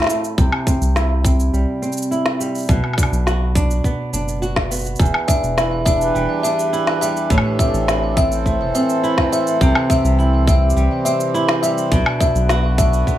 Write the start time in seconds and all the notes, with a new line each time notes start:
Already playing: A2 C4 E4
0.02 snare
0.04 snare
0.07 A3, snare, shaker
0.24 shaker
0.38 C2 C3, kick, shaker
0.52 low woodblock
0.67 C4, kick, shaker
0.81 C2, shaker
0.96 E4, snare, shaker
1.24 C4, kick, shaker
1.40 shaker
1.53 C2 G3, shaker
1.82 C4, shaker
1.92 shaker
1.97 shaker
2.02 shaker
2.11 E4, shaker
2.26 snare
2.40 G3, shaker
2.55 shaker
2.58 shaker
2.60 shaker
2.62 shaker
2.65 shaker
2.67 B1 B2, kick, shaker
2.70 shaker
2.84 low woodblock
2.93 low woodblock
2.98 D4, kick, shaker
3.03 low woodblock
3.12 B1, shaker
3.26 F#4, snare, shaker
3.55 D4, kick, shaker
3.71 shaker
3.84 B3, kick, shaker
4.13 F#1 D4, shaker
4.28 shaker
4.42 F#4, shaker
4.56 kick, snare
4.71 B3, shaker
4.74 shaker
4.79 shaker
4.81 shaker
4.84 shaker
4.86 shaker
4.96 E1 E2 E3, kick, shaker
5.01 shaker
5.05 shaker
5.14 low woodblock
5.28 D4 E5, kick, shaker
5.43 E1, shaker
5.57 E4, snare, shaker
5.85 D4 E5, kick, shaker
5.91 D4
6.01 G4 B4, shaker
6.15 E1 G3, shaker
6.43 D4 E5, shaker
6.59 shaker
6.73 E4, shaker
6.87 snare
7.01 G3 E5, shaker
7.17 shaker
7.30 A1 A2, kick, shaker
7.38 low woodblock
7.59 C4 E5, kick, shaker
7.68 A4
7.74 A1, shaker
7.81 C4
7.88 E4, snare, shaker
8.17 C4 E5, kick, shaker
8.32 C5, shaker
8.46 A3, kick, shaker
8.60 E1
8.75 C4 E5, shaker
8.89 shaker
9.03 E4, shaker
9.18 kick, snare
9.32 A3 E5, shaker
9.47 shaker
9.61 C2 C3, kick, shaker
9.75 low woodblock
9.90 C4 E5, kick, shaker
10.04 C2, shaker
10.19 E4, shaker
10.47 C4 E5, kick, shaker
10.65 G4
10.70 shaker
10.76 C2 G3, shaker
11.05 C4 E5, shaker
11.20 shaker
11.34 E4, shaker
11.49 snare
11.63 G3 E5, shaker
11.78 shaker
11.92 B1 B2 D3, kick, shaker
12.06 low woodblock
12.20 D4 E5, kick, shaker
12.35 B1 B3, shaker
12.41 B4
12.49 F#4, snare, shaker
12.60 F#4
12.78 D4 E5, kick, shaker
12.93 shaker
13.07 B3, kick, shaker